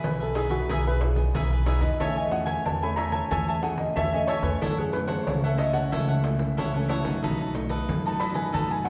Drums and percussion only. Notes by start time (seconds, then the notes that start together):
0.04 pandeiro
0.21 pandeiro
0.35 pandeiro
0.50 pandeiro
0.69 pandeiro
0.87 pandeiro
1.01 pandeiro
1.16 pandeiro
1.35 pandeiro
1.52 pandeiro
1.66 pandeiro
1.81 pandeiro
2.00 pandeiro
2.18 pandeiro
2.31 pandeiro
2.47 pandeiro
2.66 pandeiro
2.83 pandeiro
2.97 pandeiro
3.12 pandeiro
3.31 pandeiro
3.49 pandeiro
3.63 pandeiro
3.78 pandeiro
3.97 pandeiro
4.14 pandeiro
4.28 pandeiro
4.43 pandeiro
4.62 pandeiro
4.79 pandeiro
4.93 pandeiro
5.09 pandeiro
5.27 pandeiro
5.44 pandeiro
5.58 pandeiro
5.73 pandeiro
5.92 pandeiro
6.10 pandeiro
6.24 pandeiro
6.39 pandeiro
6.58 pandeiro
6.76 pandeiro
6.89 pandeiro
7.05 pandeiro
7.24 pandeiro
7.41 pandeiro
7.55 pandeiro
7.70 pandeiro
7.89 pandeiro
8.06 pandeiro
8.20 pandeiro
8.35 pandeiro
8.54 pandeiro
8.72 pandeiro
8.85 pandeiro